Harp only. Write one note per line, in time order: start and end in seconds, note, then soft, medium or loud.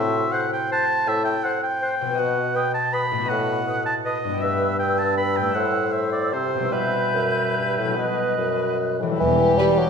0.00 2.12 A2 medium
0.00 2.14 C4 soft
0.00 1.53 E4 soft
0.00 2.09 F#4 soft
0.00 1.57 A4 soft
0.00 2.19 C5 soft
2.01 3.23 B2 medium
2.05 3.15 B3 soft
2.10 3.19 F#4 soft
2.14 3.24 D#5 soft
3.12 4.35 A2 medium
3.16 4.28 B3 soft
3.21 4.39 F#4 soft
3.25 4.41 D#5 soft
4.24 5.47 G2 soft
4.29 5.50 B3 soft
4.34 5.52 G4 soft
4.38 5.49 E5 soft
5.37 6.66 A2 soft
5.41 6.68 A3 soft
5.46 6.63 E4 soft
5.51 6.67 E5 soft
6.55 7.79 B2 soft
6.60 7.93 G3 soft
6.64 7.95 E4 soft
6.69 7.97 E5 soft
7.80 9.13 B2 soft
7.84 9.15 F#3 soft
7.89 9.17 F#4 soft
7.93 9.20 D#5 soft
9.03 9.90 E3 soft
9.07 9.90 G3 soft
9.11 9.90 E4 soft
9.16 9.90 B4 soft